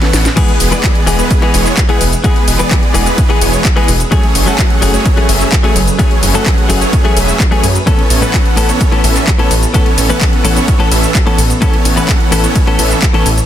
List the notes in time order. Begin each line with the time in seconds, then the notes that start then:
Already playing: E3 B3 C#4 A4 B4
0.02 E3 B3 C#4 A4 F#5, snare, closed hi-hat
0.13 A1, snare, open hi-hat, ride, cabasa
0.25 snare, closed hi-hat, cabasa
0.36 E3 G#3 B3 G#4 B4, kick, closed hi-hat, crash, ride, cabasa
0.48 closed hi-hat
0.60 E1, open hi-hat, ride, cabasa
0.71 E3 G#3 B3 G#4 B4 D5, closed hi-hat, cabasa
0.84 kick, clap, closed hi-hat, ride, cabasa
0.95 closed hi-hat
1.06 E1 E3 G#3 B3 G#4, open hi-hat, ride, cabasa
1.19 E3 G#3 B3 G#4 B4, closed hi-hat, cabasa
1.31 kick, closed hi-hat, ride, cabasa
1.42 E3 G#3 B3 G#4, closed hi-hat
1.54 E1 E3 G#3 B3 G#4 C#5, open hi-hat, ride, cabasa
1.66 clap, closed hi-hat, cabasa
1.77 kick, clap, closed hi-hat, ride, cabasa
1.89 E3 G#3 B3 G#4 B4, closed hi-hat
2.01 E1, open hi-hat, ride, cabasa
2.13 closed hi-hat, cabasa
2.24 E3 G#3 B3 G#4 B4, kick, closed hi-hat, ride, cabasa
2.36 closed hi-hat
2.48 E1, open hi-hat, ride, cabasa
2.59 E3 G#3 B3 G#4 B4 D5, closed hi-hat, cabasa
2.71 kick, clap, closed hi-hat, ride, cabasa
2.83 closed hi-hat
2.94 E1 E3 G#3 B3 G#4, open hi-hat, ride, cabasa
3.06 E3 G#3 B3 G#4 B4, closed hi-hat, cabasa
3.18 kick, closed hi-hat, ride, cabasa
3.29 E3 G#3 B3 G#4, closed hi-hat
3.41 E1 E3 G#3 B3 G#4 C#5, open hi-hat, ride, cabasa
3.53 closed hi-hat, cabasa
3.65 kick, clap, closed hi-hat, ride, cabasa
3.76 E3 G#3 B3 G#4 B4, closed hi-hat
3.88 E1, open hi-hat, ride, cabasa
4.00 closed hi-hat, cabasa
4.11 F#3 A3 C#4 G#4 C#5, kick, closed hi-hat, ride, cabasa
4.23 closed hi-hat
4.35 F#1, open hi-hat, ride, cabasa
4.46 F#3 A3 C#4 G#4 A4 F#5, closed hi-hat, cabasa
4.59 kick, clap, closed hi-hat, ride, cabasa
4.70 closed hi-hat
4.82 F#1 F#3 A3 C#4 G#4, open hi-hat, ride, cabasa
4.94 F#3 A3 C#4 G#4 C#5, closed hi-hat, cabasa
5.06 kick, closed hi-hat, ride, cabasa
5.16 F#3 A3 C#4 G#4, closed hi-hat
5.29 F#1 F#3 A3 C#4 G#4 E5, open hi-hat, ride, cabasa
5.41 clap, closed hi-hat, cabasa
5.52 kick, clap, closed hi-hat, ride, cabasa
5.63 F#3 A3 C#4 G#4 C#5, closed hi-hat
5.76 F#1, open hi-hat, ride, cabasa
5.88 closed hi-hat, cabasa
5.99 F#3 A3 C#4 G#4 C#5, kick, closed hi-hat, ride, cabasa
6.11 closed hi-hat
6.23 F#1, open hi-hat, ride, cabasa
6.34 F#3 A3 C#4 G#4 A4 F#5, closed hi-hat, cabasa
6.46 kick, clap, closed hi-hat, ride, cabasa
6.58 closed hi-hat
6.69 F#1 F#3 A3 C#4 G#4, open hi-hat, ride, cabasa
6.81 F#3 A3 C#4 G#4 C#5, closed hi-hat, cabasa
6.93 kick, closed hi-hat, ride, cabasa
7.04 F#3 A3 C#4 G#4, closed hi-hat
7.16 E1 F#3 A3 C#4 G#4 E5, open hi-hat, ride, cabasa
7.28 closed hi-hat, cabasa
7.40 kick, clap, closed hi-hat, ride, cabasa
7.51 F#3 A3 C#4 G#4 C#5, closed hi-hat
7.63 F#2, open hi-hat, ride, cabasa
7.75 closed hi-hat, cabasa
7.86 A2 E3 B3 C#4 A4 C#5, kick, closed hi-hat, ride, cabasa
7.99 closed hi-hat
8.10 A1, open hi-hat, ride, cabasa
8.21 A2 E3 B3 C#4 A4 B4 F#5, closed hi-hat, cabasa
8.34 kick, clap, closed hi-hat, ride, cabasa
8.46 closed hi-hat
8.56 A1 A2 E3 B3 C#4 A4, open hi-hat, ride, cabasa
8.69 E3 B3 C#4 A4 C#5, closed hi-hat, cabasa
8.81 kick, closed hi-hat, ride, cabasa
8.92 A2 E3 B3 C#4 A4, closed hi-hat
9.04 A1 E3 B3 C#4 A4 E5, open hi-hat, ride, cabasa
9.16 clap, closed hi-hat, cabasa
9.27 kick, clap, closed hi-hat, ride, cabasa
9.38 A2 E3 B3 C#4 A4 C#5, closed hi-hat
9.51 A1, open hi-hat, ride, cabasa
9.63 closed hi-hat, cabasa
9.74 A2 E3 B3 C#4 A4 C#5, kick, closed hi-hat, ride, cabasa
9.86 closed hi-hat
9.98 A1, open hi-hat, ride, cabasa
10.09 A2 E3 B3 C#4 A4 B4 F#5, closed hi-hat, cabasa
10.21 kick, clap, closed hi-hat, ride, cabasa
10.33 closed hi-hat
10.44 A1 A2 E3 B3 C#4 A4, open hi-hat, ride, cabasa
10.56 E3 B3 C#4 A4 C#5, closed hi-hat, cabasa
10.68 kick, closed hi-hat, ride, cabasa
10.79 A2 E3 B3 C#4 A4, closed hi-hat
10.91 A1 E3 B3 C#4 A4 E5, open hi-hat, ride, cabasa
11.03 closed hi-hat, cabasa
11.15 kick, clap, closed hi-hat, ride, cabasa
11.26 A2 E3 B3 C#4 A4 C#5, closed hi-hat
11.38 A1, open hi-hat, ride, cabasa
11.50 closed hi-hat, cabasa
11.61 A2 E3 B3 C#4 A4 C#5, kick, closed hi-hat, ride, cabasa
11.74 closed hi-hat
11.85 A1, open hi-hat, ride, cabasa
11.96 A2 E3 B3 C#4 A4 B4 F#5, closed hi-hat, cabasa
12.09 kick, clap, closed hi-hat, ride, cabasa
12.20 closed hi-hat
12.31 A1 A2 E3 B3 C#4 A4, open hi-hat, ride, cabasa
12.44 E3 B3 C#4 A4 C#5, closed hi-hat, cabasa
12.56 kick, closed hi-hat, ride, cabasa
12.67 A2 E3 B3 C#4 A4, closed hi-hat
12.79 A1 E3 B3 C#4 A4 E5, open hi-hat, ride, cabasa
12.91 clap, closed hi-hat, cabasa
13.02 kick, clap, closed hi-hat, ride, cabasa
13.13 A2 E3 B3 C#4 A4 C#5, closed hi-hat
13.26 A1, open hi-hat, ride, cabasa
13.38 closed hi-hat, cabasa